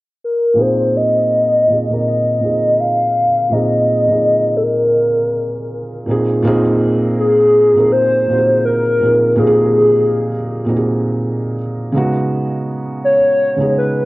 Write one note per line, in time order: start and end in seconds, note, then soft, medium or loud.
0.24 0.62 A#4 medium
0.54 1.34 A#2 medium
0.54 1.35 A#3 medium
0.54 1.35 C4 medium
0.54 1.36 D#4 medium
0.59 1.37 G#4 medium
0.59 0.98 C5 medium
0.97 2.06 D#5 loud
1.67 1.82 A#2 medium
1.67 1.83 A#3 medium
1.67 1.84 C4 medium
1.67 1.84 D#4 medium
1.72 1.85 G#4 medium
1.88 2.27 A#2 medium
1.88 2.28 A#3 medium
1.88 2.28 C4 medium
1.88 2.29 D#4 medium
1.93 2.30 A#4 medium
2.07 2.82 D#5 loud
2.39 3.18 A#2 medium
2.39 3.19 A#3 medium
2.39 3.20 C4 medium
2.39 3.20 D#4 medium
2.44 3.21 G#4 medium
2.80 3.54 F5 loud
3.49 3.89 A#2 medium
3.49 3.90 A#3 medium
3.49 3.91 C4 medium
3.49 3.91 D#4 medium
3.49 4.58 D#5 loud
3.54 3.92 G#4 medium
4.07 5.10 A#2 medium
4.07 5.11 A#3 medium
4.07 5.12 C4 medium
4.07 5.12 D#4 medium
4.13 5.13 G#4 medium
4.57 4.64 A4 medium
4.63 6.08 A#4 medium
6.06 6.37 A#2 medium
6.06 6.38 A#3 medium
6.06 6.38 C4 medium
6.06 6.39 D#4 medium
6.11 6.39 G#4 loud
6.42 7.36 A#2 loud
6.42 7.36 A#3 loud
6.42 7.37 C4 loud
6.42 7.37 D#4 loud
6.47 7.38 G#4 loud
7.19 7.93 G#4 loud
7.74 8.13 A#2 medium
7.74 8.13 A#3 medium
7.74 8.14 C4 medium
7.78 8.15 D#4 medium
7.78 8.15 A#4 medium
7.92 8.64 C5 loud
8.26 8.80 A#2 medium
8.26 8.81 A#3 medium
8.26 8.81 C4 medium
8.30 8.82 D#4 medium
8.30 8.36 F#4 medium
8.38 8.86 G#4 medium
8.65 9.40 A#4 loud
9.00 9.27 A#2 medium
9.00 9.28 A#3 medium
9.00 9.28 C4 medium
9.04 9.29 D#4 medium
9.04 9.30 G#4 medium
9.36 10.29 A#2 loud
9.36 10.29 A#3 medium
9.36 10.30 C4 medium
9.36 10.30 D#4 medium
9.36 10.84 G#4 medium
9.40 9.46 G4 medium
9.47 10.34 G#4 loud
10.65 11.54 A#2 medium
10.65 11.55 A#3 medium
10.65 11.56 C4 medium
10.65 11.56 D#4 medium
10.70 10.74 F#4 medium
10.77 11.60 G#4 medium
11.92 13.11 C#3 medium
11.92 13.11 G#3 medium
11.92 13.12 B3 medium
11.92 13.13 D#4 medium
11.97 13.13 F#4 loud
13.04 13.73 C#5 loud
13.56 13.96 C#3 medium
13.56 13.97 G#3 medium
13.56 13.98 B3 medium
13.56 13.98 D#4 medium
13.62 13.99 G#4 medium
13.78 14.05 B4 loud